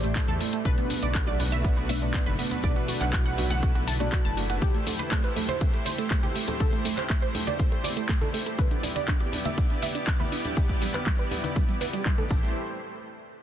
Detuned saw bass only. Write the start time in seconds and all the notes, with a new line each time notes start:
Already playing: A1
0.28 E2
0.65 B1
1.03 B1
1.40 B1
1.77 B1
2.27 F#1
2.64 B1
3.01 B1
3.38 B1
3.75 B1
4.25 F#1
12.31 A1